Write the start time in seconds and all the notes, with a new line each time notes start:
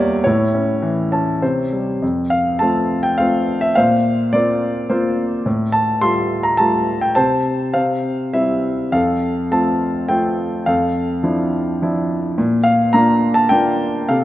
Already playing: E2 G3 A#3 A#4 C#5 D5 E5 F5 G5
0.24 A2 E4 C#5
0.54 C#4
0.82 E3
1.12 C#4 A5
1.42 C3 C5
1.73 G3
2.02 F2
2.30 F5
2.59 A3 C4 F4 A5
3.03 G5
3.18 A3 C4 F4 F5
3.61 E5
3.75 A#2 C5 F5
4.33 A#3 C4 F4 D5
4.90 A#3 C4 F4 C5
5.46 A2
5.72 A5
6.01 G3 A3 F4 C6
6.43 A#5
6.57 G3 A3 F4 A5
7.01 G5
7.15 C3 C5 A5
7.74 C3 C5 F5
8.33 G3 C4 E4 E5
8.92 F2 A4 F5
9.51 A3 C4 F4 A5
10.09 A3 C4 F4 G5
10.66 F2 A4 F5
11.23 F3 D4 E4
11.82 F3 D4 E4
12.38 A#2
12.64 F5
12.93 A#3 D4 F4 A#5
13.34 A5
13.49 A#3 D4 F4 G5
14.09 C3 A4 F5